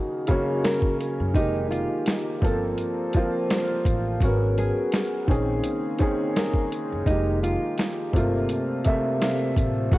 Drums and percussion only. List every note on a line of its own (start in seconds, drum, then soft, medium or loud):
0.27 kick medium
0.27 closed hi-hat medium
0.64 snare loud
0.64 closed hi-hat medium
0.82 kick medium
1.00 closed hi-hat medium
1.35 kick loud
1.35 closed hi-hat medium
1.72 closed hi-hat medium
2.06 snare loud
2.06 closed hi-hat medium
2.42 kick loud
2.42 closed hi-hat medium
2.78 closed hi-hat medium
3.13 kick medium
3.13 closed hi-hat medium
3.50 snare loud
3.50 closed hi-hat medium
3.85 kick loud
3.85 closed hi-hat medium
4.20 kick loud
4.20 closed hi-hat medium
4.58 closed hi-hat medium
4.92 snare loud
4.92 closed hi-hat medium
5.28 kick loud
5.28 closed hi-hat medium
5.64 closed hi-hat medium
5.99 kick medium
5.99 closed hi-hat medium
6.36 snare loud
6.36 closed hi-hat medium
6.54 kick medium
6.72 closed hi-hat medium
7.06 kick loud
7.06 closed hi-hat medium
7.44 closed hi-hat medium
7.78 snare loud
7.78 closed hi-hat medium
8.13 kick loud
8.13 closed hi-hat medium
8.49 closed hi-hat medium
8.84 kick medium
8.84 closed hi-hat medium
9.22 snare loud
9.22 closed hi-hat loud
9.56 kick medium
9.56 closed hi-hat medium
9.92 kick loud
9.92 closed hi-hat medium